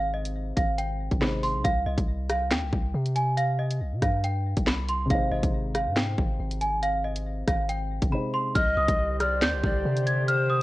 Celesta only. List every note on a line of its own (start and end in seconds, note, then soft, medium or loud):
0.14 0.54 D#5 medium
0.57 0.74 F5 medium
0.78 1.19 G5 medium
1.22 1.38 B5 medium
1.43 1.60 C6 medium
1.64 1.81 F5 loud
1.86 2.27 D#5 medium
2.30 2.46 F5 medium
2.51 3.12 G5 loud
3.16 3.33 G#5 medium
3.37 3.54 F5 medium
3.59 4.00 D#5 medium
4.02 4.19 F5 medium
4.24 4.65 G5 medium
4.67 4.84 B5 medium
4.89 5.06 C6 medium
5.10 5.27 F5 loud
5.31 5.72 D#5 medium
5.75 5.92 F5 medium
5.96 6.57 G5 medium
6.61 6.78 G#5 medium
6.83 7.00 F5 loud
7.04 7.45 D#5 medium
7.48 7.64 F5 medium
7.69 8.10 G5 medium
8.12 8.29 B5 medium
8.34 8.51 C6 medium
8.55 8.72 F6 loud
8.77 9.18 D#6 medium
9.20 9.37 F6 medium
9.42 10.03 G6 loud
10.06 10.23 G#6 medium
10.28 10.45 F6 loud
10.50 10.63 D#6 medium